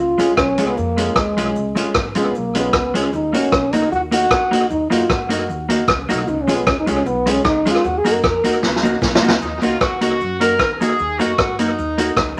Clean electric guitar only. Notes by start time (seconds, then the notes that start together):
0.18 G#3 C#4 F4
0.58 G#3 C#4 F4
0.76 muted clean electric guitar stroke
0.97 G#3 C#4 F4
1.37 G#3 C#4 F4
1.75 G#3 C#4 F4
2.15 G#3 C#4 F4
2.34 muted clean electric guitar stroke
2.55 G#3 C#4 F4
2.73 muted clean electric guitar stroke
2.94 G#3 C#4 F4
3.33 A#3 D#4 F#4
3.73 A#3 D#4 F#4
3.90 muted clean electric guitar stroke
4.11 A#3 D#4 F#4
4.51 A#3 D#4 F#4
4.90 A#3 D#4 F#4
5.29 A#3 D#4 F#4
5.48 muted clean electric guitar stroke
5.69 A#3 D#4 F#4
5.88 muted clean electric guitar stroke
6.09 A#3 D#4 F#4
6.48 G#3 C#4 F4
6.86 G#3 C#4 F4
7.05 muted clean electric guitar stroke
7.26 G#3 C#4 F4
7.66 G#3 C#4 F4
8.05 A#3 D#4 F#4
8.44 A#3 D#4 F#4
8.62 muted clean electric guitar stroke
8.83 A#3 D#4 F#4
9.01 muted clean electric guitar stroke
9.23 A#3 D#4 F#4
9.62 A#3 D#4 F#4
10.01 A#3 D#4 F#4
10.41 A#3 D#4 F#4
10.81 A#3 D#4 F#4
11.19 A#3 D#4 F#4
11.59 A#3 D#4 F#4
11.98 A#3 D#4 F#4